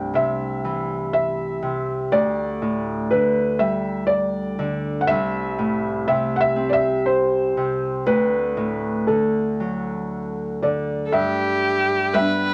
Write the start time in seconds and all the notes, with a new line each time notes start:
Already playing: C2 G2 A3 G5
0.13 C3 E5
0.64 E3
1.13 E5
1.62 C3
2.12 D2 D5
2.62 A2
3.11 D3 B4
3.59 G3 E5
4.07 D5
4.59 D3
5.01 F#5
5.08 C2 E5
5.59 A2
6.08 C3 E5
6.36 F#5
6.41 E5
6.56 C4
6.70 D5 E5
7.06 C5
7.57 C3
8.06 D2 B4
8.57 A2
9.07 D3 A4
9.60 F#3
10.62 D3 D5
11.06 A4
11.12 G2 G4 E5
12.14 G3 B3 B4 E5
12.18 D4